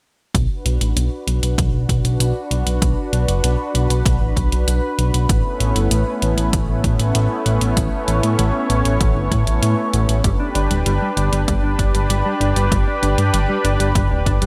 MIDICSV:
0, 0, Header, 1, 5, 480
1, 0, Start_track
1, 0, Key_signature, 2, "minor"
1, 0, Tempo, 618557
1, 269, Time_signature, 4, 2, 24, 8
1, 11221, End_track
2, 0, Start_track
2, 0, Title_t, "Analog synth pad"
2, 0, Program_c, 0, 89
2, 272, Note_on_c, 0, 62, 79
2, 272, Note_on_c, 0, 66, 74
2, 272, Note_on_c, 0, 71, 90
2, 4079, Note_off_c, 0, 62, 0
2, 4080, Note_off_c, 0, 66, 0
2, 4107, Note_on_c, 0, 61, 71
2, 4107, Note_on_c, 0, 64, 73
2, 4108, Note_on_c, 0, 57, 79
2, 4108, Note_on_c, 0, 59, 76
2, 6000, Note_off_c, 0, 71, 0
2, 6032, Note_on_c, 0, 73, 93
2, 7917, Note_off_c, 0, 59, 0
2, 7917, Note_off_c, 0, 61, 0
2, 7917, Note_off_c, 0, 64, 0
2, 7918, Note_off_c, 0, 57, 0
2, 7931, Note_off_c, 0, 73, 0
2, 7948, Note_on_c, 0, 67, 74
2, 7949, Note_on_c, 0, 62, 85
2, 7950, Note_on_c, 0, 71, 93
2, 11221, Note_off_c, 0, 62, 0
2, 11221, Note_off_c, 0, 67, 0
2, 11221, Note_off_c, 0, 71, 0
2, 11221, End_track
3, 0, Start_track
3, 0, Title_t, "Clean electric guitar"
3, 0, Program_c, 1, 27
3, 7948, Note_on_c, 1, 55, 74
3, 7985, Note_off_c, 1, 55, 0
3, 8068, Note_on_c, 1, 62, 71
3, 8129, Note_off_c, 1, 62, 0
3, 8188, Note_on_c, 1, 62, 69
3, 8225, Note_off_c, 1, 62, 0
3, 8308, Note_on_c, 1, 55, 68
3, 8344, Note_off_c, 1, 55, 0
3, 8428, Note_on_c, 1, 55, 76
3, 8465, Note_off_c, 1, 55, 0
3, 8549, Note_on_c, 1, 55, 92
3, 8609, Note_off_c, 1, 55, 0
3, 8669, Note_on_c, 1, 62, 70
3, 8729, Note_off_c, 1, 62, 0
3, 8789, Note_on_c, 1, 55, 72
3, 8849, Note_off_c, 1, 55, 0
3, 8908, Note_on_c, 1, 55, 74
3, 8945, Note_off_c, 1, 55, 0
3, 9030, Note_on_c, 1, 62, 70
3, 9089, Note_off_c, 1, 62, 0
3, 9150, Note_on_c, 1, 62, 68
3, 9185, Note_off_c, 1, 62, 0
3, 9271, Note_on_c, 1, 55, 68
3, 9306, Note_off_c, 1, 55, 0
3, 9390, Note_on_c, 1, 55, 78
3, 9426, Note_off_c, 1, 55, 0
3, 9510, Note_on_c, 1, 55, 93
3, 9570, Note_off_c, 1, 55, 0
3, 9630, Note_on_c, 1, 62, 69
3, 9689, Note_off_c, 1, 62, 0
3, 9749, Note_on_c, 1, 55, 75
3, 9809, Note_off_c, 1, 55, 0
3, 9869, Note_on_c, 1, 55, 74
3, 9905, Note_off_c, 1, 55, 0
3, 9990, Note_on_c, 1, 62, 72
3, 10050, Note_off_c, 1, 62, 0
3, 10110, Note_on_c, 1, 62, 70
3, 10146, Note_off_c, 1, 62, 0
3, 10229, Note_on_c, 1, 55, 69
3, 10265, Note_off_c, 1, 55, 0
3, 10349, Note_on_c, 1, 55, 75
3, 10385, Note_off_c, 1, 55, 0
3, 10468, Note_on_c, 1, 55, 95
3, 10529, Note_off_c, 1, 55, 0
3, 10588, Note_on_c, 1, 62, 72
3, 10649, Note_off_c, 1, 62, 0
3, 10707, Note_on_c, 1, 55, 70
3, 10768, Note_off_c, 1, 55, 0
3, 10828, Note_on_c, 1, 55, 75
3, 10865, Note_off_c, 1, 55, 0
3, 10949, Note_on_c, 1, 62, 74
3, 11009, Note_off_c, 1, 62, 0
3, 11070, Note_on_c, 1, 62, 71
3, 11105, Note_off_c, 1, 62, 0
3, 11189, Note_on_c, 1, 55, 66
3, 11221, Note_off_c, 1, 55, 0
3, 11221, End_track
4, 0, Start_track
4, 0, Title_t, "Analog synth bass"
4, 0, Program_c, 2, 38
4, 268, Note_on_c, 2, 35, 100
4, 367, Note_off_c, 2, 35, 0
4, 508, Note_on_c, 2, 35, 92
4, 607, Note_off_c, 2, 35, 0
4, 629, Note_on_c, 2, 33, 79
4, 727, Note_off_c, 2, 33, 0
4, 748, Note_on_c, 2, 35, 98
4, 847, Note_off_c, 2, 35, 0
4, 987, Note_on_c, 2, 35, 90
4, 1087, Note_off_c, 2, 35, 0
4, 1107, Note_on_c, 2, 35, 73
4, 1206, Note_off_c, 2, 35, 0
4, 1227, Note_on_c, 2, 35, 100
4, 1327, Note_off_c, 2, 35, 0
4, 1347, Note_on_c, 2, 35, 71
4, 1446, Note_off_c, 2, 35, 0
4, 1467, Note_on_c, 2, 35, 90
4, 1566, Note_off_c, 2, 35, 0
4, 1587, Note_on_c, 2, 35, 78
4, 1686, Note_off_c, 2, 35, 0
4, 1707, Note_on_c, 2, 35, 95
4, 1806, Note_off_c, 2, 35, 0
4, 1947, Note_on_c, 2, 35, 88
4, 2046, Note_off_c, 2, 35, 0
4, 2067, Note_on_c, 2, 35, 79
4, 2166, Note_off_c, 2, 35, 0
4, 2187, Note_on_c, 2, 35, 97
4, 2286, Note_off_c, 2, 35, 0
4, 2427, Note_on_c, 2, 35, 93
4, 2527, Note_off_c, 2, 35, 0
4, 2548, Note_on_c, 2, 30, 77
4, 2647, Note_off_c, 2, 30, 0
4, 2668, Note_on_c, 2, 35, 101
4, 2767, Note_off_c, 2, 35, 0
4, 2907, Note_on_c, 2, 35, 93
4, 3006, Note_off_c, 2, 35, 0
4, 3027, Note_on_c, 2, 35, 76
4, 3126, Note_off_c, 2, 35, 0
4, 3147, Note_on_c, 2, 35, 100
4, 3246, Note_off_c, 2, 35, 0
4, 3267, Note_on_c, 2, 33, 74
4, 3367, Note_off_c, 2, 33, 0
4, 3387, Note_on_c, 2, 35, 85
4, 3486, Note_off_c, 2, 35, 0
4, 3509, Note_on_c, 2, 35, 82
4, 3607, Note_off_c, 2, 35, 0
4, 3629, Note_on_c, 2, 35, 94
4, 3727, Note_off_c, 2, 35, 0
4, 3869, Note_on_c, 2, 35, 88
4, 3967, Note_off_c, 2, 35, 0
4, 3988, Note_on_c, 2, 35, 80
4, 4087, Note_off_c, 2, 35, 0
4, 4107, Note_on_c, 2, 33, 96
4, 4207, Note_off_c, 2, 33, 0
4, 4347, Note_on_c, 2, 33, 93
4, 4447, Note_off_c, 2, 33, 0
4, 4468, Note_on_c, 2, 31, 79
4, 4567, Note_off_c, 2, 31, 0
4, 4588, Note_on_c, 2, 33, 99
4, 4687, Note_off_c, 2, 33, 0
4, 4828, Note_on_c, 2, 33, 94
4, 4927, Note_off_c, 2, 33, 0
4, 4948, Note_on_c, 2, 33, 74
4, 5047, Note_off_c, 2, 33, 0
4, 5068, Note_on_c, 2, 33, 103
4, 5167, Note_off_c, 2, 33, 0
4, 5189, Note_on_c, 2, 33, 74
4, 5287, Note_off_c, 2, 33, 0
4, 5308, Note_on_c, 2, 33, 90
4, 5407, Note_off_c, 2, 33, 0
4, 5429, Note_on_c, 2, 33, 81
4, 5527, Note_off_c, 2, 33, 0
4, 5549, Note_on_c, 2, 33, 96
4, 5648, Note_off_c, 2, 33, 0
4, 5788, Note_on_c, 2, 33, 90
4, 5887, Note_off_c, 2, 33, 0
4, 5909, Note_on_c, 2, 33, 80
4, 6008, Note_off_c, 2, 33, 0
4, 6029, Note_on_c, 2, 33, 93
4, 6127, Note_off_c, 2, 33, 0
4, 6268, Note_on_c, 2, 33, 94
4, 6367, Note_off_c, 2, 33, 0
4, 6389, Note_on_c, 2, 45, 79
4, 6488, Note_off_c, 2, 45, 0
4, 6510, Note_on_c, 2, 33, 99
4, 6608, Note_off_c, 2, 33, 0
4, 6750, Note_on_c, 2, 33, 91
4, 6848, Note_off_c, 2, 33, 0
4, 6869, Note_on_c, 2, 33, 72
4, 6968, Note_off_c, 2, 33, 0
4, 6988, Note_on_c, 2, 33, 100
4, 7087, Note_off_c, 2, 33, 0
4, 7109, Note_on_c, 2, 31, 73
4, 7207, Note_off_c, 2, 31, 0
4, 7228, Note_on_c, 2, 45, 89
4, 7327, Note_off_c, 2, 45, 0
4, 7348, Note_on_c, 2, 33, 80
4, 7447, Note_off_c, 2, 33, 0
4, 7469, Note_on_c, 2, 45, 95
4, 7567, Note_off_c, 2, 45, 0
4, 7709, Note_on_c, 2, 33, 91
4, 7807, Note_off_c, 2, 33, 0
4, 7829, Note_on_c, 2, 33, 75
4, 7927, Note_off_c, 2, 33, 0
4, 7948, Note_on_c, 2, 31, 98
4, 8047, Note_off_c, 2, 31, 0
4, 8188, Note_on_c, 2, 31, 95
4, 8287, Note_off_c, 2, 31, 0
4, 8307, Note_on_c, 2, 26, 77
4, 8407, Note_off_c, 2, 26, 0
4, 8428, Note_on_c, 2, 31, 101
4, 8527, Note_off_c, 2, 31, 0
4, 8667, Note_on_c, 2, 31, 89
4, 8767, Note_off_c, 2, 31, 0
4, 8787, Note_on_c, 2, 31, 70
4, 8886, Note_off_c, 2, 31, 0
4, 8908, Note_on_c, 2, 31, 102
4, 9007, Note_off_c, 2, 31, 0
4, 9027, Note_on_c, 2, 31, 69
4, 9127, Note_off_c, 2, 31, 0
4, 9148, Note_on_c, 2, 31, 86
4, 9247, Note_off_c, 2, 31, 0
4, 9267, Note_on_c, 2, 31, 83
4, 9366, Note_off_c, 2, 31, 0
4, 9386, Note_on_c, 2, 31, 101
4, 9486, Note_off_c, 2, 31, 0
4, 9627, Note_on_c, 2, 31, 87
4, 9726, Note_off_c, 2, 31, 0
4, 9748, Note_on_c, 2, 31, 78
4, 9847, Note_off_c, 2, 31, 0
4, 9867, Note_on_c, 2, 31, 97
4, 9967, Note_off_c, 2, 31, 0
4, 10108, Note_on_c, 2, 31, 94
4, 10207, Note_off_c, 2, 31, 0
4, 10227, Note_on_c, 2, 43, 80
4, 10326, Note_off_c, 2, 43, 0
4, 10347, Note_on_c, 2, 31, 100
4, 10447, Note_off_c, 2, 31, 0
4, 10588, Note_on_c, 2, 31, 92
4, 10687, Note_off_c, 2, 31, 0
4, 10707, Note_on_c, 2, 31, 77
4, 10807, Note_off_c, 2, 31, 0
4, 10827, Note_on_c, 2, 31, 97
4, 10926, Note_off_c, 2, 31, 0
4, 10948, Note_on_c, 2, 26, 70
4, 11047, Note_off_c, 2, 26, 0
4, 11067, Note_on_c, 2, 31, 88
4, 11166, Note_off_c, 2, 31, 0
4, 11188, Note_on_c, 2, 31, 78
4, 11221, Note_off_c, 2, 31, 0
4, 11221, End_track
5, 0, Start_track
5, 0, Title_t, "Drums"
5, 268, Note_on_c, 9, 36, 108
5, 270, Note_on_c, 9, 42, 84
5, 346, Note_off_c, 9, 36, 0
5, 347, Note_off_c, 9, 42, 0
5, 510, Note_on_c, 9, 42, 64
5, 587, Note_off_c, 9, 42, 0
5, 630, Note_on_c, 9, 42, 63
5, 708, Note_off_c, 9, 42, 0
5, 750, Note_on_c, 9, 42, 81
5, 828, Note_off_c, 9, 42, 0
5, 990, Note_on_c, 9, 42, 68
5, 1067, Note_off_c, 9, 42, 0
5, 1109, Note_on_c, 9, 42, 64
5, 1187, Note_off_c, 9, 42, 0
5, 1227, Note_on_c, 9, 36, 109
5, 1231, Note_on_c, 9, 42, 87
5, 1305, Note_off_c, 9, 36, 0
5, 1308, Note_off_c, 9, 42, 0
5, 1467, Note_on_c, 9, 36, 57
5, 1470, Note_on_c, 9, 42, 64
5, 1545, Note_off_c, 9, 36, 0
5, 1547, Note_off_c, 9, 42, 0
5, 1590, Note_on_c, 9, 42, 60
5, 1667, Note_off_c, 9, 42, 0
5, 1710, Note_on_c, 9, 42, 89
5, 1787, Note_off_c, 9, 42, 0
5, 1950, Note_on_c, 9, 42, 61
5, 2027, Note_off_c, 9, 42, 0
5, 2069, Note_on_c, 9, 42, 64
5, 2147, Note_off_c, 9, 42, 0
5, 2187, Note_on_c, 9, 36, 107
5, 2189, Note_on_c, 9, 42, 85
5, 2265, Note_off_c, 9, 36, 0
5, 2267, Note_off_c, 9, 42, 0
5, 2429, Note_on_c, 9, 42, 66
5, 2507, Note_off_c, 9, 42, 0
5, 2549, Note_on_c, 9, 42, 64
5, 2627, Note_off_c, 9, 42, 0
5, 2668, Note_on_c, 9, 42, 85
5, 2746, Note_off_c, 9, 42, 0
5, 2910, Note_on_c, 9, 42, 68
5, 2987, Note_off_c, 9, 42, 0
5, 3029, Note_on_c, 9, 42, 65
5, 3107, Note_off_c, 9, 42, 0
5, 3147, Note_on_c, 9, 36, 112
5, 3150, Note_on_c, 9, 42, 89
5, 3225, Note_off_c, 9, 36, 0
5, 3228, Note_off_c, 9, 42, 0
5, 3387, Note_on_c, 9, 36, 57
5, 3390, Note_on_c, 9, 42, 64
5, 3465, Note_off_c, 9, 36, 0
5, 3468, Note_off_c, 9, 42, 0
5, 3510, Note_on_c, 9, 42, 61
5, 3588, Note_off_c, 9, 42, 0
5, 3630, Note_on_c, 9, 42, 87
5, 3707, Note_off_c, 9, 42, 0
5, 3870, Note_on_c, 9, 42, 64
5, 3947, Note_off_c, 9, 42, 0
5, 3990, Note_on_c, 9, 42, 63
5, 4067, Note_off_c, 9, 42, 0
5, 4107, Note_on_c, 9, 36, 113
5, 4109, Note_on_c, 9, 42, 89
5, 4185, Note_off_c, 9, 36, 0
5, 4187, Note_off_c, 9, 42, 0
5, 4349, Note_on_c, 9, 42, 67
5, 4426, Note_off_c, 9, 42, 0
5, 4469, Note_on_c, 9, 42, 65
5, 4546, Note_off_c, 9, 42, 0
5, 4587, Note_on_c, 9, 42, 85
5, 4665, Note_off_c, 9, 42, 0
5, 4829, Note_on_c, 9, 42, 64
5, 4906, Note_off_c, 9, 42, 0
5, 4948, Note_on_c, 9, 42, 62
5, 5026, Note_off_c, 9, 42, 0
5, 5068, Note_on_c, 9, 36, 118
5, 5069, Note_on_c, 9, 42, 90
5, 5146, Note_off_c, 9, 36, 0
5, 5146, Note_off_c, 9, 42, 0
5, 5308, Note_on_c, 9, 36, 62
5, 5309, Note_on_c, 9, 42, 61
5, 5386, Note_off_c, 9, 36, 0
5, 5386, Note_off_c, 9, 42, 0
5, 5428, Note_on_c, 9, 42, 60
5, 5506, Note_off_c, 9, 42, 0
5, 5548, Note_on_c, 9, 42, 88
5, 5625, Note_off_c, 9, 42, 0
5, 5788, Note_on_c, 9, 42, 62
5, 5866, Note_off_c, 9, 42, 0
5, 5908, Note_on_c, 9, 42, 63
5, 5986, Note_off_c, 9, 42, 0
5, 6029, Note_on_c, 9, 36, 109
5, 6029, Note_on_c, 9, 42, 85
5, 6106, Note_off_c, 9, 36, 0
5, 6106, Note_off_c, 9, 42, 0
5, 6269, Note_on_c, 9, 42, 62
5, 6347, Note_off_c, 9, 42, 0
5, 6389, Note_on_c, 9, 42, 59
5, 6467, Note_off_c, 9, 42, 0
5, 6510, Note_on_c, 9, 42, 76
5, 6587, Note_off_c, 9, 42, 0
5, 6750, Note_on_c, 9, 42, 62
5, 6828, Note_off_c, 9, 42, 0
5, 6870, Note_on_c, 9, 42, 62
5, 6948, Note_off_c, 9, 42, 0
5, 6988, Note_on_c, 9, 36, 114
5, 6989, Note_on_c, 9, 42, 83
5, 7066, Note_off_c, 9, 36, 0
5, 7067, Note_off_c, 9, 42, 0
5, 7229, Note_on_c, 9, 36, 60
5, 7230, Note_on_c, 9, 42, 61
5, 7306, Note_off_c, 9, 36, 0
5, 7307, Note_off_c, 9, 42, 0
5, 7350, Note_on_c, 9, 42, 58
5, 7428, Note_off_c, 9, 42, 0
5, 7469, Note_on_c, 9, 42, 84
5, 7547, Note_off_c, 9, 42, 0
5, 7709, Note_on_c, 9, 42, 59
5, 7787, Note_off_c, 9, 42, 0
5, 7829, Note_on_c, 9, 42, 61
5, 7907, Note_off_c, 9, 42, 0
5, 7948, Note_on_c, 9, 36, 105
5, 7948, Note_on_c, 9, 42, 82
5, 8026, Note_off_c, 9, 36, 0
5, 8026, Note_off_c, 9, 42, 0
5, 8189, Note_on_c, 9, 42, 59
5, 8266, Note_off_c, 9, 42, 0
5, 8309, Note_on_c, 9, 42, 58
5, 8386, Note_off_c, 9, 42, 0
5, 8428, Note_on_c, 9, 42, 78
5, 8506, Note_off_c, 9, 42, 0
5, 8669, Note_on_c, 9, 42, 60
5, 8746, Note_off_c, 9, 42, 0
5, 8789, Note_on_c, 9, 42, 61
5, 8867, Note_off_c, 9, 42, 0
5, 8908, Note_on_c, 9, 36, 111
5, 8909, Note_on_c, 9, 42, 80
5, 8986, Note_off_c, 9, 36, 0
5, 8987, Note_off_c, 9, 42, 0
5, 9148, Note_on_c, 9, 36, 54
5, 9150, Note_on_c, 9, 42, 60
5, 9225, Note_off_c, 9, 36, 0
5, 9227, Note_off_c, 9, 42, 0
5, 9270, Note_on_c, 9, 42, 56
5, 9348, Note_off_c, 9, 42, 0
5, 9390, Note_on_c, 9, 42, 83
5, 9468, Note_off_c, 9, 42, 0
5, 9630, Note_on_c, 9, 42, 55
5, 9708, Note_off_c, 9, 42, 0
5, 9749, Note_on_c, 9, 42, 60
5, 9827, Note_off_c, 9, 42, 0
5, 9868, Note_on_c, 9, 36, 102
5, 9870, Note_on_c, 9, 42, 81
5, 9945, Note_off_c, 9, 36, 0
5, 9947, Note_off_c, 9, 42, 0
5, 10110, Note_on_c, 9, 42, 58
5, 10187, Note_off_c, 9, 42, 0
5, 10229, Note_on_c, 9, 42, 61
5, 10307, Note_off_c, 9, 42, 0
5, 10350, Note_on_c, 9, 42, 78
5, 10427, Note_off_c, 9, 42, 0
5, 10590, Note_on_c, 9, 42, 63
5, 10667, Note_off_c, 9, 42, 0
5, 10709, Note_on_c, 9, 42, 59
5, 10787, Note_off_c, 9, 42, 0
5, 10828, Note_on_c, 9, 36, 109
5, 10829, Note_on_c, 9, 42, 79
5, 10905, Note_off_c, 9, 36, 0
5, 10907, Note_off_c, 9, 42, 0
5, 11067, Note_on_c, 9, 36, 54
5, 11069, Note_on_c, 9, 42, 59
5, 11145, Note_off_c, 9, 36, 0
5, 11147, Note_off_c, 9, 42, 0
5, 11189, Note_on_c, 9, 42, 58
5, 11221, Note_off_c, 9, 42, 0
5, 11221, End_track
0, 0, End_of_file